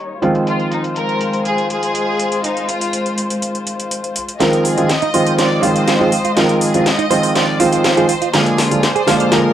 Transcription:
Already playing: grand piano D#3 G3 A#3 C#4 G4, string section G3 D#4 C#5
0.22 grand piano D#3 F3 G#3 C4 F4, string section G#3 F4 C5, closed hi-hat
0.35 closed hi-hat
0.47 violin section F4, closed hi-hat
0.60 closed hi-hat
0.72 violin section D#4, closed hi-hat
0.84 closed hi-hat
0.96 violin section A#4, closed hi-hat
1.09 closed hi-hat
1.21 closed hi-hat
1.33 closed hi-hat
1.45 violin section G#4, closed hi-hat
1.58 closed hi-hat
1.70 violin section G#4, closed hi-hat
1.83 closed hi-hat
1.95 closed hi-hat
2.19 closed hi-hat
2.32 closed hi-hat
2.44 violin section D#4, closed hi-hat
2.57 closed hi-hat
2.68 violin section F4, closed hi-hat
2.81 closed hi-hat
2.93 closed hi-hat
3.06 closed hi-hat
3.18 closed hi-hat
3.30 closed hi-hat
3.42 closed hi-hat
3.55 closed hi-hat
3.67 closed hi-hat
3.80 closed hi-hat
3.91 closed hi-hat
4.04 closed hi-hat
4.16 closed hi-hat
4.28 closed hi-hat
4.40 grand piano D#3 F3 G#3 C4 F4, string section G#3 F4 D#5, clean electric guitar F4, violin section A#4, snare, closed hi-hat
4.53 closed hi-hat
4.64 violin section G#4, open hi-hat
4.77 grand piano D#3 F3 G#3 C4 F4, closed hi-hat
4.89 violin section D#5, snare, closed hi-hat
5.02 clean electric guitar D#4, closed hi-hat
5.14 grand piano D#3 F3 G#3 C4 F4, clean electric guitar C5, open hi-hat
5.27 clean electric guitar C5, closed hi-hat
5.38 clean electric guitar C5, violin section D5, snare, closed hi-hat
5.63 grand piano D#3 F3 G#3 C4 F4, clean electric guitar F4, violin section C5, open hi-hat
5.75 clean electric guitar F4, closed hi-hat
5.88 clean electric guitar F4, snare, closed hi-hat
6.00 grand piano D#3 F3 G#3 C4 F4, clean electric guitar G#4
6.12 clean electric guitar F4, open hi-hat
6.25 clean electric guitar F4, closed hi-hat
6.36 grand piano D#3 F3 G#3 C4 F4, clean electric guitar F4, violin section A#4, snare, closed hi-hat
6.49 closed hi-hat
6.61 violin section G#4, open hi-hat
6.74 grand piano D#3 F3 G#3 C4 F4, closed hi-hat
6.86 violin section D#5, snare, closed hi-hat
6.98 clean electric guitar D#4, closed hi-hat
7.10 grand piano D#3 F3 G#3 C4 F4, clean electric guitar C5, open hi-hat
7.23 clean electric guitar C5, open hi-hat
7.35 clean electric guitar C5, violin section D5, snare, closed hi-hat
7.60 grand piano D#3 F3 G#3 C4 F4, clean electric guitar F4, violin section C5, open hi-hat
7.72 clean electric guitar F4, closed hi-hat
7.84 clean electric guitar F4, snare, closed hi-hat
7.97 grand piano D#3 F3 G#3 C4 F4, clean electric guitar G#4, closed hi-hat
8.09 clean electric guitar F4, open hi-hat
8.22 clean electric guitar F4, closed hi-hat
8.33 grand piano D3 F3 G#3 A#3 F4, string section A#3 G#4 D5, violin section G#4, clean electric guitar A#4, snare, closed hi-hat
8.46 closed hi-hat
8.58 violin section F4, snare, open hi-hat
8.70 grand piano D3 F3 G#3 A#3 F4, closed hi-hat
8.83 violin section C5, snare, closed hi-hat
8.95 clean electric guitar G#4, closed hi-hat
9.06 grand piano D3 F3 G#3 A#3 F4, clean electric guitar F5, snare, open hi-hat
9.20 clean electric guitar F5, closed hi-hat
9.31 grand piano D3 F3 G#3 A#3 F4, clean electric guitar A#4, violin section A#4, snare, closed hi-hat

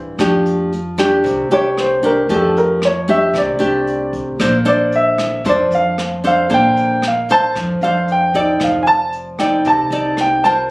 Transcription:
Already playing: nylon-string guitar G2 E3 D4
0.19 upright bass F2, nylon-string guitar F3 A3 D4 G4, kick, cross-stick, closed hi-hat
0.46 closed hi-hat
0.72 closed hi-hat
0.98 nylon-string guitar A3 D4 G4, cross-stick, closed hi-hat
1.24 upright bass C2, nylon-string guitar C3, kick, closed hi-hat
1.51 upright bass C2, nylon-string guitar A3 D4 G4, grand piano C#5, closed hi-hat
1.77 grand piano C5, cross-stick, closed hi-hat
2.03 nylon-string guitar A3 D4 G4, grand piano A#4, closed hi-hat
2.29 upright bass F2, nylon-string guitar F3 A3 D4 G4, kick, closed hi-hat
2.35 grand piano A4
2.57 grand piano A#4, closed hi-hat
2.82 grand piano C#5, cross-stick, closed hi-hat
3.08 nylon-string guitar A3 D4 G4, grand piano E5, closed hi-hat
3.34 upright bass C2, nylon-string guitar C3, kick, cross-stick, closed hi-hat
3.38 grand piano D5
3.59 upright bass C2, nylon-string guitar A3 D4 G4, closed hi-hat
3.87 closed hi-hat
4.13 kick, closed hi-hat
4.40 upright bass A#1, nylon-string guitar A#3 D4 A4 C5, kick, cross-stick, closed hi-hat
4.65 nylon-string guitar D4 A4 C5, grand piano D5, closed hi-hat
4.92 grand piano E5, closed hi-hat
5.18 cross-stick, closed hi-hat
5.45 upright bass F2, nylon-string guitar F3 D4 A4 C5, kick, closed hi-hat
5.49 grand piano D5
5.71 upright bass F2, grand piano F5, closed hi-hat
5.98 cross-stick, closed hi-hat
6.24 nylon-string guitar D4 A4 C5, grand piano F5, closed hi-hat
6.50 upright bass A#1, nylon-string guitar A#3 D4 A4 C5, kick, closed hi-hat
6.54 grand piano G5
6.77 closed hi-hat
7.02 cross-stick, closed hi-hat
7.08 grand piano F5
7.29 nylon-string guitar D4 A4 C5, grand piano A5, closed hi-hat
7.55 upright bass F2, nylon-string guitar F3, kick, cross-stick, closed hi-hat
7.81 upright bass F2, nylon-string guitar D4 A4 C5, grand piano F5, closed hi-hat
8.08 grand piano G5, closed hi-hat
8.34 nylon-string guitar D#4 A4 D5, kick, closed hi-hat
8.60 upright bass F1, nylon-string guitar F3, grand piano F5, kick, cross-stick, closed hi-hat
8.83 grand piano G#5, closed hi-hat
8.87 grand piano A5
9.13 closed hi-hat
9.39 nylon-string guitar D#4 A4 D5, grand piano G5, cross-stick, closed hi-hat
9.65 upright bass C2, nylon-string guitar C3, grand piano A5, kick, closed hi-hat
9.91 upright bass C2, nylon-string guitar D#4 A4 D5, closed hi-hat
10.17 grand piano G5, cross-stick, closed hi-hat
10.44 nylon-string guitar F4 A#4 C5, grand piano A5, closed hi-hat

